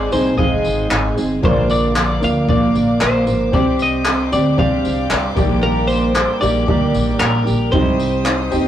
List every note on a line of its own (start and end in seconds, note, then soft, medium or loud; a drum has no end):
0.00 0.12 G#3 medium
0.00 0.11 C4 medium
0.00 0.12 C4 medium
0.00 0.11 D#4 medium
0.00 0.12 G#4 medium
0.00 1.41 C5 medium
0.00 1.46 C5 medium
0.00 0.12 D5 loud
0.00 1.41 G#5 medium
0.11 0.39 C2 medium
0.11 0.37 G#3 soft
0.11 0.33 C4 medium
0.11 0.38 C4 soft
0.11 0.33 D#4 medium
0.11 0.38 D#4 medium
0.11 0.38 G#4 medium
0.11 0.34 G#4 medium
0.11 0.37 C5 medium
0.11 0.34 D#5 medium
0.11 tambourine medium
0.37 0.60 G#1 medium
0.37 0.91 G#2 medium
0.37 0.91 D#3 medium
0.37 0.88 G#3 medium
0.37 1.23 C4 medium
0.37 0.89 C4 medium
0.37 1.23 D#4 medium
0.37 0.90 D#4 medium
0.37 1.24 G#4 medium
0.37 0.91 G#4 medium
0.37 1.13 D#5 medium
0.37 1.24 F5 medium
0.37 kick loud
0.64 0.87 G#1 medium
0.64 tambourine medium
0.89 1.13 G#1 medium
0.89 1.17 G#3 medium
0.89 1.17 C4 medium
0.89 1.16 D#4 medium
0.89 1.15 G#4 medium
0.89 clap loud
0.89 clap medium
1.16 1.39 G1 medium
1.16 1.42 G#3 soft
1.16 1.43 C4 soft
1.16 1.43 D#4 medium
1.16 1.43 G#4 soft
1.16 tambourine medium
1.42 2.19 A#1 loud
1.42 1.96 A#2 medium
1.42 2.48 D3 medium
1.42 1.93 F3 medium
1.42 2.08 A#3 medium
1.42 1.94 A#3 medium
1.42 2.08 D4 medium
1.42 1.96 D4 medium
1.42 2.08 F4 medium
1.42 1.96 A#4 medium
1.42 3.52 A#4 medium
1.42 1.70 C5 medium
1.42 1.51 C#5 medium
1.42 3.52 D5 medium
1.42 3.52 F5 medium
1.42 7.69 D6 medium
1.42 kick loud
1.51 2.12 D5 medium
1.70 2.24 D5 medium
1.70 tambourine medium
1.95 2.22 F3 medium
1.95 2.21 A#3 medium
1.95 2.21 D4 medium
1.95 2.20 A#4 medium
1.95 clap loud
1.95 clap medium
2.21 2.44 D2 medium
2.21 2.47 F3 soft
2.21 2.44 A#3 medium
2.21 2.48 A#3 medium
2.21 2.44 D4 medium
2.21 2.48 D4 medium
2.21 2.44 F4 medium
2.21 2.48 A#4 medium
2.21 2.44 D5 medium
2.21 2.49 F5 medium
2.21 tambourine medium
2.47 2.70 A#1 medium
2.47 3.01 A#2 medium
2.47 3.52 D3 medium
2.47 2.99 F3 medium
2.47 3.33 A#3 medium
2.47 3.00 A#3 medium
2.47 3.33 D4 medium
2.47 3.02 D4 medium
2.47 3.34 F4 medium
2.47 3.01 A#4 medium
2.47 3.34 D5 medium
2.47 3.03 D5 medium
2.47 kick loud
2.75 2.97 A#1 medium
2.75 tambourine medium
3.01 3.28 A#1 medium
3.01 3.27 F3 medium
3.01 3.27 A#3 medium
3.01 3.26 D4 medium
3.01 3.26 A#4 medium
3.01 3.56 C5 medium
3.01 clap loud
3.01 clap medium
3.27 3.50 G#1 medium
3.27 3.53 F3 soft
3.27 3.54 A#3 soft
3.27 3.53 D4 soft
3.27 3.54 A#4 soft
3.27 tambourine medium
3.52 4.28 C2 loud
3.52 4.06 C3 medium
3.52 4.05 G3 medium
3.52 4.17 C4 medium
3.52 4.05 C4 medium
3.52 4.07 D4 medium
3.52 4.18 G4 medium
3.52 4.07 G4 medium
3.52 5.35 C5 medium
3.52 4.18 C5 medium
3.52 3.81 D5 medium
3.52 8.68 G5 medium
3.52 kick loud
3.79 4.30 D#5 loud
3.79 tambourine medium
4.05 4.32 G3 medium
4.05 4.32 C4 medium
4.05 4.32 D4 medium
4.05 4.31 G4 medium
4.05 clap loud
4.05 clap medium
4.31 4.54 D2 loud
4.31 4.53 C4 medium
4.31 4.58 C4 soft
4.31 4.54 D4 medium
4.31 4.58 D4 medium
4.31 4.58 G4 medium
4.31 4.54 G4 medium
4.31 4.59 D5 medium
4.31 4.55 D5 medium
4.31 tambourine medium
4.57 4.80 C2 medium
4.57 5.11 C3 medium
4.57 5.09 G3 medium
4.57 5.37 C4 medium
4.57 5.09 C4 medium
4.57 5.37 D4 medium
4.57 5.11 D4 medium
4.57 5.36 G4 medium
4.57 5.12 G4 medium
4.57 5.36 D5 medium
4.57 5.34 F5 medium
4.57 kick medium
4.85 5.07 C2 medium
4.85 tambourine medium
5.10 5.33 C2 medium
5.10 5.37 G3 medium
5.10 5.37 C4 medium
5.10 5.35 D4 medium
5.10 5.34 G4 medium
5.10 clap loud
5.10 clap medium
5.36 6.23 A#1 medium
5.36 5.61 G3 soft
5.36 6.21 A#3 medium
5.36 5.61 A#3 soft
5.36 5.62 D4 medium
5.36 6.22 D#4 medium
5.36 5.62 G4 medium
5.36 6.22 G4 medium
5.36 7.70 A#4 medium
5.36 6.22 D5 medium
5.36 kick loud
5.36 tambourine medium
5.62 6.15 A#2 medium
5.62 6.19 D#3 medium
5.62 6.14 G3 medium
5.62 6.14 A#3 medium
5.62 6.15 D4 medium
5.62 6.16 G4 medium
5.62 5.87 A#4 loud
5.88 6.37 C5 loud
5.88 tambourine medium
6.15 6.42 G3 medium
6.15 6.40 G4 medium
6.15 clap medium
6.15 clap loud
6.41 6.63 A#1 loud
6.41 6.67 G3 soft
6.41 6.63 A#3 medium
6.41 6.68 A#3 medium
6.41 6.68 D4 medium
6.41 6.64 D#4 medium
6.41 6.68 G4 medium
6.41 6.64 G4 medium
6.41 7.19 D5 loud
6.41 6.64 D5 medium
6.41 tambourine medium
6.66 6.90 D2 medium
6.66 7.20 A#2 medium
6.66 7.23 D#3 medium
6.66 7.18 G3 medium
6.66 7.52 A#3 medium
6.66 7.19 A#3 medium
6.66 7.19 D4 medium
6.66 7.52 D#4 medium
6.66 7.53 G4 medium
6.66 7.21 G4 medium
6.66 7.53 D5 medium
6.66 kick loud
6.94 7.16 A#1 loud
6.94 tambourine medium
7.19 7.43 A#1 loud
7.19 7.46 G3 medium
7.19 7.46 A#3 medium
7.19 7.45 D4 medium
7.19 7.45 G4 medium
7.19 7.69 A#4 medium
7.19 clap loud
7.19 clap medium
7.46 7.69 A#1 loud
7.46 7.72 G3 soft
7.46 7.73 A#3 soft
7.46 7.73 D4 soft
7.46 7.73 G4 medium
7.46 tambourine medium
7.72 8.48 C2 loud
7.72 8.25 C3 medium
7.72 8.24 G3 medium
7.72 8.37 C4 medium
7.72 8.24 C4 medium
7.72 8.38 D#4 medium
7.72 8.25 D#4 medium
7.72 8.38 G4 medium
7.72 8.26 G4 medium
7.72 8.68 C5 medium
7.72 8.38 D#5 medium
7.72 8.68 D#6 medium
7.72 kick loud
7.99 tambourine medium
8.25 8.52 G3 medium
8.25 8.52 C4 medium
8.25 8.52 D#4 medium
8.25 8.51 G4 medium
8.25 clap loud
8.25 clap medium
8.50 8.68 D#2 medium
8.50 8.68 C4 medium
8.50 8.68 D#4 medium
8.50 8.68 G4 medium
8.50 8.68 D#5 medium
8.50 tambourine medium